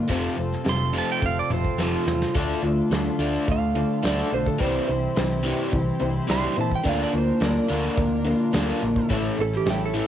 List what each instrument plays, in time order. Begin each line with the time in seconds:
0.08 fingered electric bass F1, overdriven electric guitar F2 C3 F3, twelve-string acoustic guitar F3 A3 C4 F4 A4, string section A3 C4 F4 A4, kick, open hi-hat
0.37 fingered electric bass F1, overdriven electric guitar F2 C3, twelve-string acoustic guitar C4 F4 A4, open hi-hat
0.52 snare
0.65 fingered electric bass F1, overdriven electric guitar F2 C3, twelve-string acoustic guitar A3 C4 F4 A4, snare, open hi-hat
0.69 pedal steel guitar C6
0.94 overdriven electric guitar F2 C3 F3, open hi-hat
0.98 pedal steel guitar A5
1.12 pedal steel guitar G5
1.22 fingered electric bass F1, overdriven electric guitar F2 C3, pedal steel guitar F5, kick
1.39 pedal steel guitar D5
1.50 fingered electric bass F1, overdriven electric guitar F2 C3, twelve-string acoustic guitar C4 F4 A4, pedal steel guitar C5, mid tom
1.65 kick
1.78 fingered electric bass F1, overdriven electric guitar F2 C3 F3, twelve-string acoustic guitar A3 C4 F4 A4, snare
1.82 pedal steel guitar F4
2.06 fingered electric bass E2, overdriven electric guitar F2 C3, twelve-string acoustic guitar C4 F4 A4, snare
2.22 snare
2.34 fingered electric bass D2, twelve-string acoustic guitar D3 A3 D4 F4 A4, overdriven electric guitar D3 A3 D4, string section A3 D4 F4 A4, kick, open hi-hat
2.62 fingered electric bass D2, overdriven electric guitar D3 A3, twelve-string acoustic guitar D4 F4 A4, open hi-hat
2.90 fingered electric bass D2, overdriven electric guitar D3 A3, twelve-string acoustic guitar A3 D4 F4 A4, snare, open hi-hat
3.19 fingered electric bass D2, overdriven electric guitar D3 A3 D4, open hi-hat
3.48 fingered electric bass D2, overdriven electric guitar D3 A3, pedal steel guitar F5, kick, open hi-hat
3.74 overdriven electric guitar D3 A3, twelve-string acoustic guitar D4 F4 A4, open hi-hat
4.03 fingered electric bass D2, overdriven electric guitar D3 A3 D4, twelve-string acoustic guitar A3 D4 F4 A4, snare, open hi-hat
4.07 pedal steel guitar D5
4.31 fingered electric bass B1, overdriven electric guitar D3 A3, twelve-string acoustic guitar D4 F4 A4, pedal steel guitar C5, open hi-hat
4.47 pedal steel guitar A4, kick
4.59 fingered electric bass C2, overdriven electric guitar C3 E3 G3, twelve-string acoustic guitar C3 E3 G3 C4 E4 C5, string section G3 C4 E4 G4, pedal steel guitar C5, kick, open hi-hat
4.88 fingered electric bass C2, overdriven electric guitar C3 E3, twelve-string acoustic guitar G3 C4 E4 C5, open hi-hat
5.16 fingered electric bass C2, overdriven electric guitar C3 E3, twelve-string acoustic guitar G3 C4 E4 C5, snare, open hi-hat
5.43 overdriven electric guitar C3 E3 G3, open hi-hat
5.72 fingered electric bass C2, overdriven electric guitar C3 E3, kick, open hi-hat
6.00 fingered electric bass C2, overdriven electric guitar C3 E3, twelve-string acoustic guitar G3 C4 E4 C5, open hi-hat
6.27 fingered electric bass C2, overdriven electric guitar C3 E3 G3, twelve-string acoustic guitar G3 C4 E4, pedal steel guitar C6, snare, open hi-hat
6.32 twelve-string acoustic guitar C5
6.56 fingered electric bass A#2, overdriven electric guitar C3 E3, twelve-string acoustic guitar G3 C4 E4 C5, open hi-hat
6.61 pedal steel guitar A5
6.71 kick
6.76 pedal steel guitar G5
6.84 fingered electric bass D2, overdriven electric guitar D3 A#3 D4, twelve-string acoustic guitar D3 A#3 D4 F4 A#4, string section A#3 D4 F4 A#4, kick, open hi-hat
6.89 pedal steel guitar F5
7.04 pedal steel guitar D5
7.12 fingered electric bass D2, overdriven electric guitar D3 A#3, twelve-string acoustic guitar D4 F4 A#4, open hi-hat
7.18 pedal steel guitar C5
7.41 fingered electric bass D2, overdriven electric guitar D3 A#3, twelve-string acoustic guitar A#3 D4 F4 A#4, pedal steel guitar D5, snare, open hi-hat
7.69 fingered electric bass D2, overdriven electric guitar D3 A#3 D4, open hi-hat
7.97 fingered electric bass D2, overdriven electric guitar D3 A#3, kick, open hi-hat
8.25 overdriven electric guitar D3 A#3, twelve-string acoustic guitar D4 F4 A#4, open hi-hat
8.52 fingered electric bass D2, overdriven electric guitar D3 A#3 D4, twelve-string acoustic guitar A#3 D4 F4 A#4, snare, open hi-hat
8.81 fingered electric bass A#1, overdriven electric guitar D3 A#3, twelve-string acoustic guitar D4 F4 A#4, open hi-hat
8.96 kick
9.09 fingered electric bass A1, twelve-string acoustic guitar A2 E3 A3 C#4 E4 A4, overdriven electric guitar A2 E3 A3, string section A3 C#4 E4 A4, kick, open hi-hat
9.37 fingered electric bass A1, overdriven electric guitar A2 E3, twelve-string acoustic guitar A3 C#4 E4 A4, open hi-hat
9.41 pedal steel guitar A4
9.53 pedal steel guitar G4, snare
9.66 fingered electric bass A1, overdriven electric guitar A2 E3, twelve-string acoustic guitar A3 C#4 E4 A4, snare, open hi-hat
9.70 pedal steel guitar G5
9.85 pedal steel guitar A4
9.94 overdriven electric guitar A2 E3 A3, open hi-hat
10.00 pedal steel guitar A4